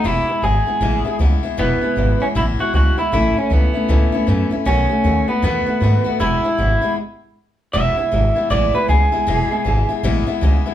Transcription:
X:1
M:4/4
L:1/8
Q:"Swing" 1/4=156
K:E
V:1 name="Clean electric guitar"
E2 G4 z2 | B,3 C E F F E | E C B,4- B, z | C3 B, B,4 |
E4 z4 | e4 =d B G2- | G4 z4 |]
V:2 name="Steel-string acoustic guitar"
[E,,B,,E,G,B,E] [E,G,B,E] [E,G,B,E] [E,G,B,E] [E,,B,,E,G,B,E] [E,G,B,E] [E,G,B,E] [E,G,B,E] | [E,,B,,E,G,B,E] [E,G,B,E] [E,G,B,E] [E,G,B,E] [E,,B,,E,G,B,E] [E,G,B,E] [E,G,B,E] [E,G,B,E] | [A,,E,A,CE] [A,CE] [E,A,CE] [A,CE] [A,,E,A,CE] [A,CE] [E,A,CE] [A,CE] | [B,,D,A,B,F] [A,B,F] [D,A,B,F] [A,B,F] [B,,D,A,B,F] [A,B,F] [D,A,B,F] [A,B,F] |
[E,,B,,E,G,B,E] [E,G,B,E] [E,G,B,E] [E,G,B,E] z4 | [E,,B,,E,G,B,E] [E,G,B,E] [E,G,B,E] [E,G,B,E] [E,,B,,E,G,B,E] [E,G,B,E] [E,G,B,E] [E,G,B,E] | [E,,B,,E,G,B,E] [E,G,B,E] [E,G,B,E] [E,G,B,E] [E,,B,,E,G,B,E] [E,G,B,E] [E,G,B,E] [E,G,B,E] |]
V:3 name="Upright bass" clef=bass
E,,, z G,,, z A,,, z C,, z | E,,, z G,,, z A,,, z C,, z | A,,, z C,, z C,, z F,, z | B,,, z D,, z E,, z G,, z |
E,,, z G,,, z4 z | E,,, z G,,, z A,,, z C,, z | E,,, z G,,, z A,,, z C,, z |]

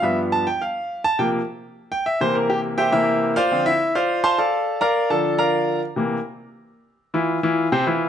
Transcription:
X:1
M:4/4
L:1/8
Q:1/4=207
K:F
V:1 name="Grand piano"
e z a g f3 a | g z4 g e c | B G z [Gceg] [EBce]3 [Fcdf]- | [Fcdf] [Ee]2 [Fcdf]2 [cfac'] [Adfa]2- |
[Adfa] [Bdfb]2 [Aa]2 [Bdfb]3 | z8 | z [E,EF]2 [E,EF]2 [C,Cc] [E,EF]2 |]
V:2 name="Grand piano" clef=bass
[G,,F,=B,]3 z4 z | [C,F,B,] z6 [C,E,B,]- | [C,E,B,]4 [C,E,B,]3 z | [D,F,C] z6 z |
z3 [D,F,D]4- [D,F,D] | z [C,E,B,] z6 | z8 |]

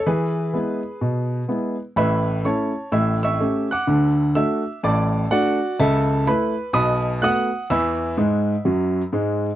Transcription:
X:1
M:4/4
L:1/8
Q:"Swing" 1/4=126
K:A
V:1 name="Grand piano"
[GB]6- [GB] z | [Beb]2 [cac']2 [ee'] [ec'e']2 [fd'f']- | [fd'f']2 [ee']2 [dad']2 [Fdf]2 | [Aea]2 [Bb]2 [^db^d']2 [fd'f']2 |
[ebe']6 z2 |]
V:2 name="Grand piano" clef=bass
E,2 [G,B,E]2 B,,2 [G,B,E]2 | [A,,,A,,]2 [A,CE]2 [A,,,A,,]2 [A,C=G]2 | [D,,D,]2 [A,DF]2 [A,,,A,,]2 [A,D]2 | [C,,C,]2 [A,E]2 [B,,,B,,]2 [A,B,F]2 |
[E,,E,]2 [G,,G,]2 [F,,F,]2 [G,,G,]2 |]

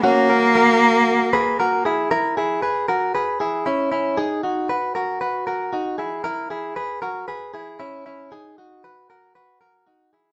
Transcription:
X:1
M:4/4
L:1/8
Q:1/4=116
K:B
V:1 name="Clean electric guitar"
[CF] [FA] [FA]3 [GB] [FA] [EG] | [EA] [EG] [GB] [FA] [GB] [EG] [CE] [CE] | [DG] [DF] [FB] [FA] [FB] [FA] [DF] [EG] | [EA] [EG] [GB] [FA] [GB] [EG] [CE] [CE] |
[DG] [DF] [FB] [FA] [FB] [FA] [DF] [EG] |]
V:2 name="Cello"
A,6- A, z | z8 | z8 | z8 |
z8 |]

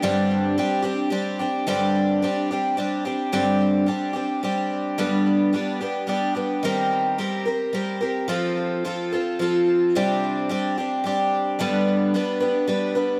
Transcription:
X:1
M:3/4
L:1/8
Q:1/4=109
K:Gmix
V:1 name="Twelve-string acoustic guitar"
[G,,D,G,CDG]2 [G,CDG] [G,CDG] [G,CDG] [G,CDG] | [G,,D,G,CDG]2 [G,CDG] [G,CDG] [G,CDG] [G,CDG] | [G,,D,G,CDG]2 [G,CDG] [G,CDG] [G,CDG]2 | [G,,D,G,B,DG]2 [G,B,DG] [G,B,DG] [G,B,DG] [G,B,DG] |
[_E,G,CG_B]2 [G,CGB] [CGB] [G,CGB] [CGB] | [F,CFA]2 [F,CFA] [CFA] [F,CFA]2 | [C,G,CDG]2 [G,CDG] [CDG] [G,CDG]2 | [G,,D,G,B,DB]2 [G,B,DB] [G,B,DB] [G,B,DB] [G,B,DB] |]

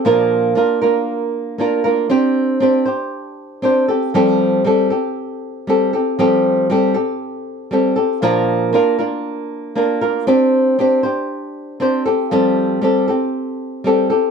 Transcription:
X:1
M:4/4
L:1/8
Q:1/4=117
K:F
V:1 name="Nylon-string guitar"
[B,,F,B,DFB]2 [B,DFB] [B,DFB]3 [B,DFB] [B,DFB] | [CDGc]2 [CDGc] [DGc]3 [CDGc] [CGA] | [F,G,CGA]2 [G,CGA] [CGA]3 [G,CGA] [CGA] | [F,G,CGA]2 [G,CGA] [CGA]3 [G,CGA] [CGA] |
[B,,F,B,DFB]2 [B,DFB] [B,DFB]3 [B,DFB] [B,DFB] | [CDGc]2 [CDGc] [DGc]3 [CDGc] [CGA] | [F,G,CGA]2 [G,CGA] [CGA]3 [G,CGA] [CGA] |]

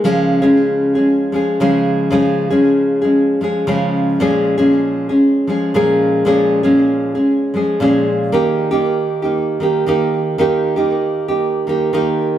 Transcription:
X:1
M:4/4
L:1/16
Q:1/4=116
K:Dblyd
V:1 name="Nylon-string guitar"
[D,F,A,DA]3 [D,F,A,DA]4 [A,DA]3 [F,A,DA]2 [D,F,A,DA]4 | [D,F,A,DA]3 [D,F,A,DA]4 [A,DA]3 [F,A,DA]2 [D,F,A,DA]4 | [B,,F,A,DA]3 [B,,F,A,DA]4 [A,DA]3 [F,A,DA]2 [B,,F,A,DA]4 | [B,,F,A,DA]3 [B,,F,A,DA]4 [A,DA]3 [F,A,DA]2 [B,,F,A,DA]4 |
[E,B,EG]3 [E,B,EG]4 [B,EG]3 [E,B,EG]2 [E,B,EG]4 | [E,B,EG]3 [E,B,EG]4 [B,EG]3 [E,B,EG]2 [E,B,EG]4 |]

